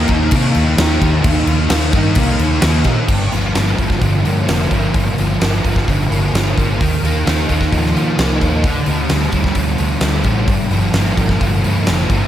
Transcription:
Already playing: distorted electric guitar D#3 A#3
0.08 fingered electric bass D#2, distorted electric guitar D#4, kick, crash
0.12 distorted electric guitar A#3
0.31 fingered electric bass C3, distorted electric guitar D#3 A#3, kick, crash
0.35 distorted electric guitar D#4
0.54 fingered electric bass D#2, crash
0.76 fingered electric bass D#2, distorted electric guitar D#3 A#3 D#4, snare, crash
1.00 fingered electric bass D#2, distorted electric guitar A#3 D#4, kick, crash
1.23 fingered electric bass D#2, distorted electric guitar D#3 A#3 D#4, kick, crash
1.46 fingered electric bass D#2, crash
1.69 fingered electric bass D#2, distorted electric guitar D#3 A#3 D#4, snare, crash
1.93 fingered electric bass G2, distorted electric guitar D#4, kick, crash
1.98 distorted electric guitar A#3
2.15 fingered electric bass C2, distorted electric guitar D#3 A#3, kick, crash
2.20 distorted electric guitar D#4
2.39 fingered electric bass D#2, crash
2.61 fingered electric bass D#2, distorted electric guitar D#3 A#3 D#4, snare, crash
2.84 fingered electric bass A#2, distorted electric guitar D#4, kick, snare, crash
2.89 distorted electric guitar A#3
3.07 fingered electric bass G1, distorted electric guitar G2, kick, crash
3.32 fingered electric bass G1, distorted electric guitar F3, open hi-hat
3.55 fingered electric bass G1, distorted electric guitar A#3, snare, open hi-hat
3.78 fingered electric bass G1, distorted electric guitar F3, kick, open hi-hat
3.90 kick, snare
4.01 fingered electric bass G1, distorted electric guitar D3, kick, open hi-hat
4.24 fingered electric bass G2, distorted electric guitar A#3, open hi-hat
4.48 fingered electric bass F1, distorted electric guitar F3, snare, open hi-hat
4.71 fingered electric bass G1, distorted electric guitar A#3, kick, open hi-hat
4.94 fingered electric bass G1, distorted electric guitar G2, kick, open hi-hat
5.18 fingered electric bass G1, distorted electric guitar F3, open hi-hat
5.41 fingered electric bass G1, distorted electric guitar A#3, snare, open hi-hat
5.64 fingered electric bass G1, distorted electric guitar F3, kick, open hi-hat
5.76 kick, snare
5.88 fingered electric bass G1, distorted electric guitar D3, kick, open hi-hat
6.10 fingered electric bass G1, distorted electric guitar A#3, open hi-hat
6.33 fingered electric bass G1, distorted electric guitar F3, snare, open hi-hat
6.58 fingered electric bass G1, distorted electric guitar A#3, kick, open hi-hat
6.80 fingered electric bass D#2, distorted electric guitar D#3, kick, open hi-hat
7.03 fingered electric bass D#2, distorted electric guitar A#3, open hi-hat
7.26 fingered electric bass D#2, distorted electric guitar D#4, snare, open hi-hat
7.49 fingered electric bass D#2, distorted electric guitar A#3, kick, open hi-hat
7.61 kick, snare
7.72 fingered electric bass D#2, distorted electric guitar F3, kick, open hi-hat
7.86 snare
7.94 fingered electric bass D#3, distorted electric guitar D#4, open hi-hat
8.18 fingered electric bass C2, distorted electric guitar A#3, snare, open hi-hat
8.41 fingered electric bass D#2, distorted electric guitar D#4, kick, open hi-hat
8.64 fingered electric bass D2, distorted electric guitar D3, kick, open hi-hat
8.86 fingered electric bass D2, distorted electric guitar G3, open hi-hat
9.09 fingered electric bass D2, distorted electric guitar A3, snare, open hi-hat
9.32 fingered electric bass D2, distorted electric guitar G3, kick, open hi-hat
9.44 kick, snare
9.55 fingered electric bass D2, distorted electric guitar D3, kick, open hi-hat
9.78 fingered electric bass D2, distorted electric guitar A3, open hi-hat
10.01 fingered electric bass D2, distorted electric guitar G3, snare, open hi-hat
10.24 fingered electric bass A1, distorted electric guitar A3, kick, open hi-hat
10.48 fingered electric bass G1, distorted electric guitar G2, kick, open hi-hat
10.71 fingered electric bass G1, distorted electric guitar F3, open hi-hat
10.94 fingered electric bass G1, distorted electric guitar A#3, snare, open hi-hat
11.17 fingered electric bass G1, distorted electric guitar F3, kick, open hi-hat
11.29 kick, snare
11.40 fingered electric bass G1, distorted electric guitar D3, kick, open hi-hat
11.64 fingered electric bass G2, distorted electric guitar A#3, open hi-hat
11.87 fingered electric bass F1, distorted electric guitar F3, snare, open hi-hat
12.10 fingered electric bass G1, distorted electric guitar A#3, kick, open hi-hat

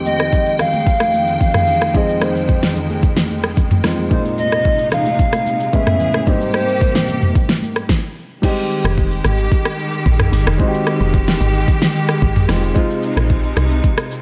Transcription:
Already playing: grand piano F2 G#3 C4 D#4 G4, string section F2 D#3 G#3 G5
0.05 soft synth lead D#5, high conga, shaker
0.19 cross-stick, shaker
0.32 kick, shaker
0.46 shaker
0.59 soft synth lead F5, cross-stick, low conga, shaker
0.73 high conga, shaker
0.86 kick, shaker
1.00 cross-stick, high conga, shaker
1.14 high conga, shaker
1.27 shaker
1.40 soft synth lead F5, kick, low conga, shaker
1.54 cross-stick, mid tom, high conga, shaker
1.67 low conga, shaker
1.81 cross-stick, high conga, shaker
1.93 grand piano F2 G#3 C4 D#4 G#4, soft synth lead D#5, kick, shaker
2.09 shaker
2.22 soft synth lead C5, cross-stick, high conga, shaker
2.35 shaker
2.49 kick, shaker
2.62 snare, shaker
2.76 low conga, shaker
2.89 high conga, shaker
3.03 kick, shaker
3.17 snare, high conga, shaker
3.30 high conga, shaker
3.44 cross-stick, shaker
3.56 kick, low conga, shaker
3.71 mid tom, high conga, shaker
3.83 grand piano F2 G#3 C4 D#4 F4, cross-stick, snare, low conga, shaker
3.97 high conga, shaker
4.09 grand piano A#2 G#3 C4 D#4 F4, string section C3 D#4, soft synth lead C5, kick, shaker
4.25 shaker
4.38 soft synth lead D#5, high conga, shaker
4.52 cross-stick, shaker
4.65 kick, shaker
4.78 shaker
4.92 soft synth lead F5, cross-stick, low conga, shaker
5.06 high conga, shaker
5.19 kick, shaker
5.33 cross-stick, high conga, shaker
5.46 high conga, shaker
5.60 shaker
5.73 grand piano A2 G#3 B3 C#4 E4, string section C#3 B3 G#4, soft synth lead E5, kick, low conga, shaker
5.87 cross-stick, mid tom, high conga, shaker
6.00 low conga, shaker
6.14 cross-stick, high conga, shaker
6.26 grand piano G#2 G3 A#3 C4 D#4, string section C3 A#3 G4, soft synth lead C5, kick, shaker
6.41 shaker
6.54 soft synth lead C5, cross-stick, high conga, shaker
6.68 shaker
6.81 kick, shaker
6.95 snare, high conga, shaker
7.08 low conga, shaker
7.22 mid tom, high conga, shaker
7.35 kick, shaker
7.49 snare, high conga, shaker
7.62 high conga, shaker
7.76 cross-stick, shaker
7.89 kick, snare
8.42 string section D#3 G#3 G4, grand piano G3 C4 D#4 G4, kick, crash, shaker
8.48 grand piano G#3
8.58 shaker
8.71 shaker
8.84 log drum bass F1, cross-stick, shaker
8.98 kick, shaker
9.11 shaker
9.24 log drum bass G#1, cross-stick, shaker
9.38 shaker
9.52 kick, shaker
9.65 cross-stick, shaker
9.79 shaker
9.93 shaker
10.06 log drum bass A#1, kick, shaker
10.20 cross-stick, mid tom, shaker
10.32 log drum bass G#1, open hi-hat, shaker
10.46 log drum bass F1, cross-stick, shaker
10.58 grand piano G#3 C4 D#4 F#4, string section G4, kick, shaker
10.68 grand piano G4
10.74 shaker
10.87 cross-stick, shaker
11.01 log drum bass F1, shaker
11.14 kick, shaker
11.27 snare, shaker
11.41 log drum bass G#1, shaker
11.54 shaker
11.68 kick, shaker
11.82 snare, shaker
11.96 shaker
12.09 cross-stick, shaker
12.22 log drum bass G#1, kick, shaker
12.36 mid tom, shaker
12.48 log drum bass F1, grand piano G#3 C4 D#4 F4, cross-stick, snare, open hi-hat, shaker
12.62 shaker
12.74 string section C3 D#4, grand piano G#3 C4 D#4 F4, kick, shaker
12.90 shaker
13.03 shaker
13.17 log drum bass A#1, cross-stick, shaker
13.30 kick, shaker
13.43 shaker
13.57 log drum bass C2, cross-stick, shaker
13.70 shaker
13.84 kick, shaker
13.98 cross-stick, shaker
14.11 shaker

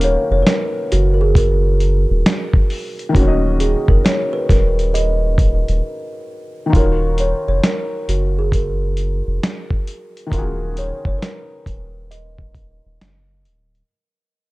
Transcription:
Already playing: sub bass D#1, felt piano D#3 A#3 C#4 F#4 F5
0.01 kalimba C#5, closed hi-hat
0.31 sub bass F1, kalimba C#5
0.42 kalimba B4
0.47 kalimba A#4, snare, closed hi-hat
0.92 sub bass F#1, kalimba F#4, closed hi-hat
1.14 kalimba A#4
1.21 kalimba G#4
1.35 kalimba A#4, kick, closed hi-hat
1.80 closed hi-hat
2.10 sub bass D#1
2.26 snare, closed hi-hat
2.53 kick
2.70 open hi-hat
2.99 closed hi-hat
3.09 felt piano D#3 A#3
3.15 sub bass D#1, felt piano C#4 F#4, kalimba F#4, kick, closed hi-hat
3.21 felt piano C#5
3.28 felt piano D#5
3.60 kalimba G#4, closed hi-hat
3.88 sub bass F1, kalimba A#4, kick
4.05 kalimba C#5, snare, closed hi-hat
4.33 kalimba B4
4.49 sub bass D#1, kalimba A#4, kick, snare, closed hi-hat
4.79 closed hi-hat
4.94 kalimba D#5, closed hi-hat
5.38 kick, closed hi-hat
5.68 sub bass D#1, closed hi-hat
6.66 felt piano D#3 D#4
6.72 sub bass D#1, felt piano F4 F#4, kick, closed hi-hat
6.76 kalimba A#4, felt piano C#5
7.18 kalimba C#5, closed hi-hat
7.48 sub bass F1, kalimba C#5
7.64 kalimba A#4, snare, closed hi-hat
8.08 sub bass F#1, kalimba F#4, closed hi-hat
8.39 kalimba G#4
8.52 kalimba A#4, kick, closed hi-hat
8.97 closed hi-hat
9.27 sub bass F1
9.43 snare, closed hi-hat
9.70 kick
9.87 closed hi-hat
10.17 closed hi-hat
10.27 felt piano D#3 D#4
10.32 sub bass D#1, felt piano F4, kalimba A#4, kick, closed hi-hat
10.36 felt piano F#4 G#4
10.77 kalimba C#5, closed hi-hat
11.05 sub bass F1, kalimba C#5, kick
11.18 kalimba A#4 B4
11.22 snare, closed hi-hat
11.66 sub bass D#1, kick, closed hi-hat
12.11 kalimba D#5, closed hi-hat
12.38 kick
12.55 kick, closed hi-hat
12.85 sub bass D#1
13.01 sub bass F#1, snare, closed hi-hat
13.45 sub bass D1, closed hi-hat
13.75 closed hi-hat

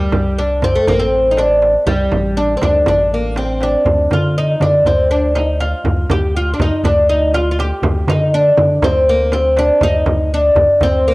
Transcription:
Already playing: analog synth bass D2, oud G3
0.12 analog synth bass C2, frame drum, darbuka dum
0.39 oud D4
0.62 oud C4, frame drum, darbuka dum
0.75 oud A3
0.87 analog synth bass A1, oud A#3, frame drum, darbuka dum
0.99 oud C4
1.13 darbuka ka
1.31 oud D#4
1.37 oud D4, darbuka tek, frame drum
1.62 darbuka tek, frame drum
1.86 analog synth bass C2, oud G3, darbuka dum, frame drum
2.11 analog synth bass A1, darbuka dum, frame drum
2.36 oud D4, darbuka ka
2.57 oud C4
2.61 analog synth bass D2, oud D4, frame drum, darbuka dum
2.74 darbuka ka
2.86 analog synth bass A1, oud D4, frame drum, darbuka dum
3.12 oud A#3, darbuka ka
3.23 darbuka ka
3.36 oud C4, darbuka tek, frame drum
3.61 oud D4, darbuka tek, frame drum
3.85 analog synth bass D2, darbuka dum, frame drum
4.11 analog synth bass D3, oud F4, darbuka dum, frame drum
4.36 oud D#4, darbuka ka
4.60 analog synth bass D3, oud D4, darbuka dum, frame drum
4.85 analog synth bass D2, oud C4, darbuka dum, frame drum
5.11 oud D4, darbuka ka
5.35 oud D#4, darbuka tek, frame drum
5.60 oud F4, darbuka tek, frame drum
5.84 analog synth bass D2, frame drum, darbuka dum
6.09 analog synth bass D2, oud G4, darbuka dum, frame drum
6.35 oud F4, darbuka ka
6.54 oud D4
6.59 analog synth bass D2, oud D#4, darbuka dum, frame drum
6.83 analog synth bass D2, oud D4, darbuka dum, frame drum
7.09 oud D#4
7.34 oud F4, darbuka tek, frame drum
7.51 oud F4
7.59 oud G4, darbuka tek, frame drum
7.82 analog synth bass D2, darbuka dum, frame drum
8.07 analog synth bass D3, oud D#4, darbuka dum, frame drum
8.34 oud D4
8.57 analog synth bass D3, frame drum, darbuka dum
8.82 analog synth bass D2, oud C4, darbuka dum, frame drum
9.07 oud A#3, darbuka ka
9.32 oud C4, darbuka tek, frame drum
9.57 oud D4, darbuka tek, frame drum
9.81 analog synth bass D2, oud D#4, darbuka dum, frame drum
10.06 analog synth bass D2, frame drum, darbuka dum
10.31 oud D4, darbuka ka
10.55 analog synth bass D2, darbuka dum, frame drum
10.68 darbuka ka
10.80 analog synth bass D2, oud C4, darbuka dum, frame drum
11.08 oud A#3

